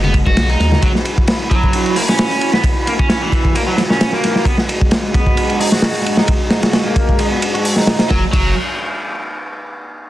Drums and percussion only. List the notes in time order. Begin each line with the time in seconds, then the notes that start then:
0.04 high conga
0.14 kick, ride
0.26 kick, high bongo
0.37 snare, ride, high conga
0.49 ride
0.60 snare, ride
0.72 snare, high bongo, high conga
0.82 kick, ride
0.95 snare
1.05 ride
1.18 kick
1.28 snare, ride
1.51 kick, ride
1.63 kick
1.73 ride
1.86 ride
1.96 open hi-hat
2.09 snare
2.19 snare, ride
2.31 ride
2.41 ride
2.53 snare
2.64 kick, ride
2.87 ride
2.99 kick
3.10 snare, ride
3.32 kick, ride
3.45 kick
3.55 ride
3.78 snare, ride
3.90 snare
4.01 snare, ride
4.12 snare
4.24 snare, ride
4.36 snare
4.45 kick, ride
4.58 snare
4.69 ride
4.81 kick
4.91 snare, ride
5.14 kick, ride
5.26 kick
5.37 ride
5.50 ride
5.61 open hi-hat
5.72 snare
5.82 snare, ride
5.95 ride
6.06 ride
6.17 snare
6.28 kick, ride
6.51 snare, ride
6.63 snare, ride
6.73 snare, ride
6.96 kick, ride
7.09 kick
7.19 ride
7.42 ride
7.55 ride
7.65 open hi-hat
7.76 snare
7.87 snare, ride
7.99 snare, ride
8.10 kick, snare
8.33 kick, crash